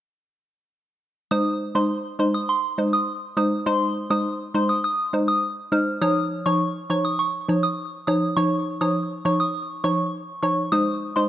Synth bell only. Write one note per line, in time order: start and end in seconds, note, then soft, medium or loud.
1.31 1.50 D#6 medium
1.75 1.85 C6 medium
2.19 2.29 C6 medium
2.34 2.44 D#6 medium
2.49 2.58 C6 medium
2.93 3.03 D#6 medium
3.37 3.47 D#6 medium
3.66 3.86 C6 medium
4.10 4.20 D#6 medium
4.55 4.64 C6 medium
4.69 4.79 D#6 medium
4.84 4.94 D#6 medium
5.28 5.38 D#6 medium
5.72 5.82 F6 medium
6.01 6.21 D#6 medium
6.46 6.55 C#6 medium
6.90 7.00 C#6 medium
7.05 7.14 D#6 medium
7.19 7.29 C#6 medium
7.63 7.73 D#6 medium
8.07 8.17 D#6 medium
8.37 8.56 C#6 medium
8.81 8.91 D#6 medium
9.25 9.35 C#6 medium
9.40 9.49 D#6 medium
9.84 9.94 C#6 medium
10.43 10.52 C#6 medium
10.72 10.91 D#6 medium
11.16 11.26 C6 medium